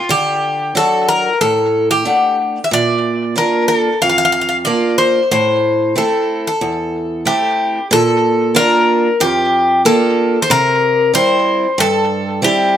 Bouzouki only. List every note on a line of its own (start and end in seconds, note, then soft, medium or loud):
0.10 0.77 G4 medium
0.77 1.07 A4 medium
1.08 1.41 A#4 medium
1.41 1.90 A4 medium
1.91 2.36 G4 medium
2.64 2.71 E5 medium
2.73 3.33 D5 medium
3.38 3.67 A#4 medium
3.68 3.99 A4 medium
4.02 4.08 F5 medium
4.09 4.17 F5 medium
4.18 4.24 F5 medium
4.25 4.31 F5 medium
4.32 4.40 F5 medium
4.41 4.47 F5 medium
4.49 4.56 F5 medium
4.65 4.98 D5 medium
4.98 5.29 C5 medium
5.32 5.97 C5 medium
5.98 6.46 A4 medium
6.47 7.40 A4 medium
7.27 7.87 G4 medium
7.93 8.56 A4 medium
8.56 9.23 A#4 medium
9.21 9.81 G4 medium
9.86 10.42 A4 medium
10.42 10.50 C5 medium
10.51 11.11 A#4 medium
11.15 11.80 C5 medium
11.80 12.40 A4 medium
12.44 12.77 G4 medium